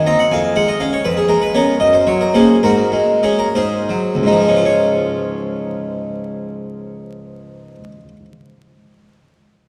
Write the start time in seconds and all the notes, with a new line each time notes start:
0.06 C4 D#4 A#5
0.19 F#5
0.32 F2 F5 G#5
0.56 G#3 F#5
0.68 D#5
0.80 C#4 F5
0.93 C#5
1.05 F2 B4
1.17 G#4
1.28 G#3 A#4
1.42 B4
1.54 B3 C#4 A#4 C#5
1.80 F#2 D#5
1.93 C5
2.07 F#3 C#5
2.21 A#4
2.34 A#3 C#4 G#4 C5
2.63 G#2 F#4 A#4
2.92 G#3
3.23 G#3 C#4 G#4
3.39 A#4
3.55 G#2 G#4 C5
3.89 F#3
4.15 C#2
4.23 G#2 G#3 D#4
4.32 F3
4.40 G#3
4.48 C#4
4.56 F4
4.65 C#5